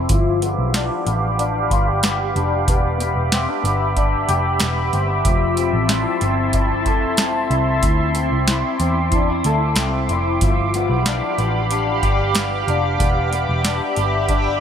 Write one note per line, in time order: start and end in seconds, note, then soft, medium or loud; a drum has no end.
0.00 0.16 C4 soft
0.00 0.16 E4 medium
0.00 0.16 A4 soft
0.00 5.22 D6 medium
0.09 0.55 G1 medium
0.09 2.68 F3 medium
0.09 2.65 G4 medium
0.09 2.66 F5 medium
0.09 2.65 B5 medium
0.09 kick loud
0.09 closed hi-hat medium
0.42 1.07 B3 medium
0.42 closed hi-hat soft
0.58 0.89 B1 medium
0.74 1.38 D4 soft
0.74 snare medium
0.74 closed hi-hat medium
1.07 1.68 A1 medium
1.07 2.03 B3 soft
1.07 closed hi-hat soft
1.39 2.36 D4 medium
1.39 closed hi-hat medium
1.71 2.32 G1 medium
1.71 1.87 F4 medium
1.71 kick medium
1.71 closed hi-hat medium
1.87 2.74 G4 soft
2.03 2.68 B3 soft
2.03 snare medium
2.03 closed hi-hat medium
2.36 2.66 F1 medium
2.36 3.32 D4 medium
2.36 closed hi-hat soft
2.67 3.14 E1 medium
2.67 2.99 B3 medium
2.67 5.23 G4 medium
2.67 10.37 E5 medium
2.67 5.23 B5 medium
2.67 kick loud
2.67 closed hi-hat medium
3.00 3.63 B3 medium
3.00 closed hi-hat soft
3.15 3.46 E1 medium
3.32 3.48 C4 medium
3.32 snare medium
3.32 closed hi-hat medium
3.48 3.95 D4 soft
3.64 4.25 G1 medium
3.64 4.60 B3 medium
3.64 closed hi-hat soft
3.96 4.93 D4 medium
3.96 kick medium
3.96 closed hi-hat medium
4.28 4.59 F1 medium
4.28 5.32 G4 medium
4.28 closed hi-hat medium
4.60 4.92 E1 medium
4.60 5.32 B3 soft
4.60 snare loud
4.60 closed hi-hat medium
4.93 5.24 G1 medium
4.93 5.09 C4 medium
4.93 closed hi-hat soft
5.09 5.32 D4 soft
5.25 5.71 F1 medium
5.25 8.52 F3 medium
5.25 10.38 E4 medium
5.25 7.81 A5 medium
5.25 10.38 C6 medium
5.25 kick loud
5.25 closed hi-hat medium
5.57 6.22 C4 medium
5.57 closed hi-hat soft
5.73 6.04 A1 medium
5.89 6.54 E4 medium
5.89 snare medium
5.89 closed hi-hat medium
6.21 6.86 G1 medium
6.21 7.18 C4 medium
6.21 closed hi-hat soft
6.53 7.51 E4 medium
6.53 kick medium
6.53 closed hi-hat medium
6.86 7.48 F1 medium
6.86 9.46 A4 medium
6.86 kick medium
6.86 closed hi-hat soft
7.17 8.15 C4 medium
7.17 snare medium
7.17 closed hi-hat medium
7.50 7.81 C2 medium
7.50 8.48 E4 medium
7.50 closed hi-hat soft
7.81 8.29 D2 medium
7.81 14.60 D6 medium
7.81 kick loud
7.81 closed hi-hat medium
8.15 8.79 C4 soft
8.15 closed hi-hat soft
8.32 8.62 C2 medium
8.47 9.13 E4 medium
8.47 snare medium
8.47 closed hi-hat medium
8.80 9.41 E2 medium
8.80 9.77 C4 medium
8.80 closed hi-hat soft
9.12 9.30 D4 medium
9.12 kick medium
9.12 closed hi-hat medium
9.30 10.09 E4 soft
9.44 9.75 D2 medium
9.44 10.49 A4 medium
9.44 closed hi-hat medium
9.76 10.07 C2 medium
9.76 10.49 C4 medium
9.76 snare medium
9.76 closed hi-hat medium
10.09 10.40 F1 medium
10.09 10.49 E4 medium
10.09 closed hi-hat soft
10.41 10.88 G1 medium
10.41 13.00 F3 medium
10.41 12.97 G4 medium
10.41 12.97 F5 medium
10.41 12.96 B5 medium
10.41 kick loud
10.41 closed hi-hat medium
10.74 11.38 B3 medium
10.74 closed hi-hat soft
10.90 11.20 B1 medium
11.06 11.71 D4 medium
11.06 snare medium
11.06 closed hi-hat medium
11.38 12.00 A1 medium
11.38 12.35 B3 medium
11.38 closed hi-hat soft
11.71 12.68 D4 medium
11.71 closed hi-hat medium
12.03 12.64 G1 medium
12.03 14.60 G4 medium
12.03 kick medium
12.03 closed hi-hat medium
12.35 13.00 B3 medium
12.35 snare loud
12.35 closed hi-hat medium
12.68 12.98 F1 medium
12.68 13.65 D4 medium
12.68 closed hi-hat soft
13.00 13.46 E1 loud
13.00 13.32 B3 medium
13.00 14.60 G4 medium
13.00 14.60 E5 medium
13.00 14.60 B5 medium
13.00 kick medium
13.00 closed hi-hat medium
13.33 13.97 B3 medium
13.33 closed hi-hat soft
13.49 13.79 E1 medium
13.64 14.28 D4 medium
13.64 snare medium
13.64 closed hi-hat medium
13.96 14.60 G1 medium
13.96 14.60 B3 soft
13.96 closed hi-hat soft
14.29 14.60 D4 medium
14.29 kick medium
14.29 closed hi-hat medium